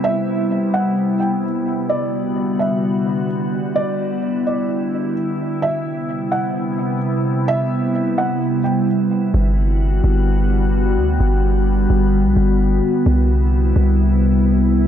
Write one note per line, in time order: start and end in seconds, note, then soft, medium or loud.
0.00 1.86 C3 medium
0.00 5.58 G3 medium
0.00 5.58 B3 medium
0.00 1.86 E4 medium
0.00 0.70 E5 loud
0.74 1.17 F#5 medium
1.20 1.42 G5 medium
1.89 5.58 D3 medium
1.89 3.74 F#4 medium
1.89 2.56 D5 medium
2.59 3.25 E5 medium
3.76 9.30 E4 medium
3.76 4.42 D5 loud
4.47 5.12 D5 medium
5.62 9.31 C3 medium
5.62 9.31 G3 medium
5.62 9.31 B3 medium
5.62 6.28 E5 medium
6.32 6.98 F#5 medium
7.48 8.14 E5 loud
8.18 8.62 F#5 medium
8.64 8.86 G5 medium
9.34 10.01 G1 loud
9.34 13.03 D3 medium
9.34 13.03 G3 medium
9.34 14.88 B3 medium
9.34 13.03 F#4 medium
10.04 10.99 G1 loud
10.97 11.19 D2 loud
11.20 11.87 G1 loud
11.90 12.27 G1 loud
12.25 12.36 B1 medium
12.37 12.81 G1 loud
13.06 13.73 C2 loud
13.06 14.88 C3 medium
13.06 14.88 G3 medium
13.06 14.88 E4 medium
13.76 14.88 C2 loud